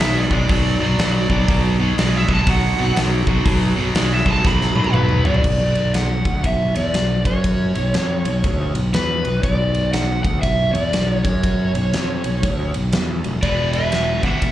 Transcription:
0.00 0.27 B1 loud
0.00 0.27 B2 medium
0.00 0.28 G#3 loud
0.00 0.17 E5 loud
0.00 snare loud
0.00 open hi-hat medium
0.18 1.62 D5 loud
0.30 0.47 B1 loud
0.30 0.47 B2 medium
0.30 0.47 G#3 medium
0.30 kick medium
0.48 0.76 B1 medium
0.48 0.77 B2 medium
0.48 0.77 F#3 medium
0.48 kick loud
0.48 open hi-hat medium
0.80 0.96 B1 medium
0.80 0.97 B2 medium
0.80 0.97 F#3 medium
0.99 1.26 B1 loud
0.99 1.27 B2 medium
0.99 1.27 F#3 medium
0.99 snare loud
0.99 open hi-hat medium
1.29 1.46 B1 medium
1.29 1.46 B2 medium
1.29 1.47 F#3 medium
1.29 kick medium
1.48 1.92 B1 loud
1.48 1.76 B2 loud
1.48 1.76 F#3 loud
1.48 kick loud
1.48 open hi-hat medium
1.80 1.96 B2 medium
1.80 1.96 F#3 medium
1.97 2.25 B1 loud
1.97 2.26 B2 medium
1.97 2.26 G#3 loud
1.97 2.17 D5 loud
1.97 snare loud
1.97 open hi-hat medium
2.17 2.32 E5 loud
2.28 2.45 B1 loud
2.28 2.45 B2 medium
2.28 2.45 G#3 medium
2.28 kick medium
2.33 2.50 A5 loud
2.47 2.74 B1 medium
2.47 2.75 B2 medium
2.47 2.75 F#3 loud
2.47 2.97 F#5 loud
2.47 kick loud
2.47 open hi-hat medium
2.77 2.94 B1 medium
2.77 2.94 B2 medium
2.77 2.94 F#3 medium
2.95 3.23 B1 loud
2.95 3.24 B2 medium
2.95 3.24 F#3 medium
2.95 snare loud
2.95 open hi-hat medium
3.27 3.44 B1 loud
3.27 3.44 B2 medium
3.27 3.44 F#3 medium
3.27 kick loud
3.45 3.73 B1 loud
3.45 3.73 B2 loud
3.45 3.74 F#3 loud
3.45 kick loud
3.45 open hi-hat medium
3.76 3.93 B1 medium
3.76 3.93 B2 medium
3.76 3.94 F#3 medium
3.95 4.23 B1 loud
3.95 4.23 B2 medium
3.95 4.24 G#3 loud
3.95 4.12 D5 loud
3.95 snare loud
3.95 open hi-hat medium
4.14 4.29 E5 loud
4.26 4.43 B1 loud
4.26 4.43 B2 medium
4.26 4.44 G#3 medium
4.26 kick medium
4.31 4.46 A5 loud
4.44 4.72 B1 medium
4.44 4.73 B2 medium
4.44 4.73 F#3 loud
4.44 4.94 B5 loud
4.44 kick loud
4.44 snare medium
4.61 snare medium
4.75 4.92 B1 loud
4.75 4.93 B2 medium
4.75 4.93 F#3 medium
4.75 high tom medium
4.84 high tom medium
4.94 5.22 B1 loud
4.94 5.23 B2 medium
4.94 5.23 F#3 medium
4.94 5.26 B4 loud
4.94 mid tom loud
5.09 mid tom medium
5.25 5.42 B1 medium
5.25 5.43 B2 medium
5.25 5.43 F#3 medium
5.25 5.95 D5 loud
5.25 floor tom loud
5.34 floor tom medium
5.44 6.21 B1 medium
5.44 kick medium
5.44 crash medium
5.75 ride medium
5.94 6.46 F#5 loud
5.94 snare loud
5.94 ride medium
6.25 6.43 D2 medium
6.25 kick medium
6.25 ride medium
6.44 6.73 B1 medium
6.44 6.76 E5 loud
6.44 kick medium
6.44 ride loud
6.75 6.93 E2 medium
6.75 7.23 D5 medium
6.75 ride medium
6.94 7.23 B1 medium
6.94 snare loud
6.94 ride medium
7.25 7.72 F#2 medium
7.25 8.72 C#5 medium
7.25 kick loud
7.25 ride medium
7.44 kick loud
7.44 ride medium
7.75 7.93 B1 medium
7.75 ride medium
7.94 8.23 F2 loud
7.94 snare medium
7.94 ride medium
8.25 8.42 B1 medium
8.25 ride medium
8.44 8.73 D2 medium
8.44 kick loud
8.44 ride medium
8.75 8.92 B1 medium
8.75 ride medium
8.93 9.22 E2 loud
8.93 9.44 B4 medium
8.93 snare loud
8.93 ride medium
9.24 9.42 B1 medium
9.24 ride medium
9.43 10.21 B1 medium
9.43 9.93 D5 loud
9.43 kick loud
9.43 ride medium
9.75 ride medium
9.93 10.22 F#5 loud
9.93 snare loud
9.93 ride medium
10.24 10.42 D2 medium
10.24 10.41 F#5 loud
10.24 kick medium
10.24 ride medium
10.42 10.72 B1 medium
10.42 10.72 E5 medium
10.42 kick medium
10.42 ride medium
10.73 10.91 E2 medium
10.73 11.12 D5 medium
10.73 ride medium
10.92 11.22 B1 medium
10.92 snare loud
10.92 ride loud
11.12 11.24 C#5 medium
11.24 11.71 F#2 medium
11.24 12.70 C#5 medium
11.24 kick loud
11.24 ride medium
11.43 kick loud
11.43 ride medium
11.74 11.92 B1 medium
11.74 ride medium
11.93 12.22 F2 medium
11.93 snare loud
11.93 ride medium
12.24 12.42 B1 medium
12.24 ride medium
12.43 12.72 D2 medium
12.43 kick loud
12.43 ride medium
12.74 12.92 B1 medium
12.74 ride medium
12.93 13.22 E2 loud
12.93 snare loud
12.93 ride medium
13.24 13.42 E1 medium
13.24 ride medium
13.43 14.19 E1 medium
13.43 14.23 E2 medium
13.43 14.23 B2 loud
13.43 14.23 E3 loud
13.43 13.71 B4 medium
13.43 13.73 D5 medium
13.43 kick medium
13.43 ride medium
13.73 14.21 B4 medium
13.73 14.24 E5 medium
13.73 ride medium
13.92 snare medium
13.92 ride medium
14.23 14.41 G1 medium
14.23 14.42 G2 medium
14.23 14.42 D3 medium
14.23 14.42 G3 loud
14.23 14.52 E5 medium
14.23 14.52 F#5 loud
14.23 kick medium
14.23 ride medium
14.42 14.52 E1 medium
14.42 14.52 E2 medium
14.42 14.52 B2 medium
14.42 kick medium
14.42 ride medium

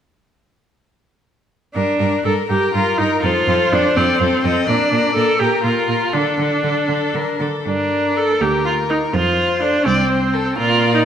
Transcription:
1.74 1.83 G2 soft
1.74 2.21 D4 soft
1.74 1.98 A#4 soft
1.99 2.08 G2 soft
1.99 2.24 A#4 soft
2.25 2.33 G2 soft
2.25 2.33 A4 medium
2.25 2.48 A#4 soft
2.49 2.58 G2 soft
2.49 2.73 G4 soft
2.49 2.73 A#4 soft
2.49 3.26 A#4 soft
2.74 2.83 G2 soft
2.74 2.99 F4 soft
2.74 2.98 A#4 soft
2.98 3.07 G2 soft
2.98 3.22 D#4 soft
2.98 3.21 A#4 soft
3.22 3.32 F2 soft
3.22 3.74 F4 medium
3.22 3.47 A4 soft
3.22 3.98 C5 soft
3.47 3.56 F2 soft
3.47 3.71 A4 soft
3.72 3.81 F2 soft
3.72 3.97 D4 medium
3.72 3.95 A4 soft
3.95 4.05 F2 soft
3.95 4.67 C4 medium
3.95 4.19 A4 soft
3.95 4.21 D5 soft
4.20 4.29 F2 soft
4.20 4.43 A4 soft
4.20 4.45 C5 soft
4.44 4.53 F2 soft
4.44 4.67 A4 soft
4.44 4.69 D#5 medium
4.67 4.76 A#2 soft
4.67 5.14 D4 medium
4.67 4.91 A#4 soft
4.67 5.40 D5 soft
4.92 5.00 A#2 soft
4.92 5.16 A#4 soft
5.15 5.24 A#2 soft
5.15 5.41 A4 medium
5.15 5.39 A#4 soft
5.38 5.48 A#2 soft
5.38 5.63 G4 medium
5.38 6.12 A#4 soft
5.38 5.64 A#4 soft
5.63 5.71 A#2 soft
5.63 6.14 F4 soft
5.63 5.89 A#4 soft
5.88 5.96 A#2 soft
5.88 6.12 A#4 soft
6.12 6.21 D3 soft
6.12 7.40 D4 soft
6.12 7.25 A4 soft
6.12 6.38 A4 soft
6.38 6.46 D3 soft
6.38 6.63 A4 soft
6.63 6.71 D3 soft
6.63 6.88 A4 soft
6.88 6.97 D3 soft
6.88 7.17 A4 soft
7.14 7.22 D3 soft
7.14 7.42 A#4 soft
7.40 7.48 D3 soft
7.40 7.66 A4 soft
7.66 8.26 G2 soft
7.66 8.19 D4 soft
7.66 8.37 A#4 soft
8.16 8.42 A4 medium
8.16 8.35 A#4 soft
8.40 8.99 D2 soft
8.40 8.65 G4 soft
8.40 9.15 A#4 soft
8.66 8.74 F4 soft
8.89 8.98 D#4 medium
8.89 9.07 A#4 soft
9.13 9.71 F2 soft
9.13 9.61 F4 medium
9.13 9.86 C5 soft
9.62 9.87 D4 medium
9.62 9.80 A4 soft
9.85 10.43 C2 medium
9.85 10.58 C4 medium
9.85 10.10 D5 soft
10.11 10.36 C5 soft
10.33 10.52 A4 soft
10.33 10.58 A4 soft
10.58 11.05 A#2 soft
10.58 10.94 F4 medium
10.58 11.05 A#4 soft
10.58 11.05 D5 soft
10.94 11.00 D#4 medium

